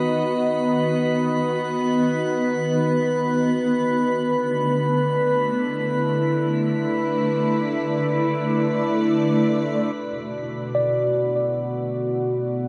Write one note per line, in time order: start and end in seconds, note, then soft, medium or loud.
0.00 3.48 D#3 medium
0.00 5.33 B3 medium
0.00 4.79 F#4 medium
0.00 9.97 B4 medium
0.00 3.49 D#5 medium
0.00 9.96 B5 medium
3.48 12.68 D3 medium
4.10 12.68 A3 medium
5.41 12.68 E4 medium
6.10 12.68 D5 medium
9.94 12.68 B2 medium
9.94 12.68 F#4 medium
10.75 12.68 D5 soft